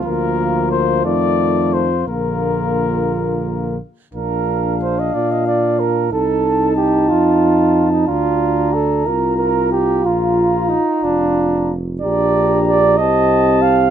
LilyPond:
<<
  \new Staff \with { instrumentName = "Trumpet" } { \time 6/8 \key bes \major \tempo 4. = 61 bes'4 c''8 d''4 c''8 | bes'2~ bes'8 r8 | f''2. | a''2. |
bes''2. | bes''2~ bes''8 r8 | \key g \minor bes''4. a''4. | }
  \new Staff \with { instrumentName = "Flugelhorn" } { \time 6/8 \key bes \major f'2. | f'2~ f'8 r8 | bes'4 c''16 ees''16 d''16 ees''16 d''8 bes'8 | a'4 g'8 f'4~ f'16 ees'16 |
f'4 a'8 bes'8 bes'8 g'8 | f'4 ees'8 d'4 r8 | \key g \minor d''4 d''8 ees''4 f''8 | }
  \new Staff \with { instrumentName = "French horn" } { \time 6/8 \key bes \major bes4. a4. | bes2~ bes8 r8 | d'2. | ees'2. |
d'4. f'4. | f'2~ f'8 r8 | \key g \minor g'4. g'4. | }
  \new Staff \with { instrumentName = "Trombone" } { \time 6/8 \key bes \major f4. ees4. | d2~ d8 r8 | r4. f'4. | ees'2. |
d'4. f'4.~ | f'4. f'4 r8 | \key g \minor d'4. c'4. | }
  \new Staff \with { instrumentName = "Bass trombone" } { \clef bass \time 6/8 \key bes \major d,4. f,4. | bes,,2~ bes,,8 r8 | bes,,4. bes,4. | c,4. f,4. |
d,4. c,4. | bes,,4 r8 f,,4. | \key g \minor bes,,4. c,4. | }
>>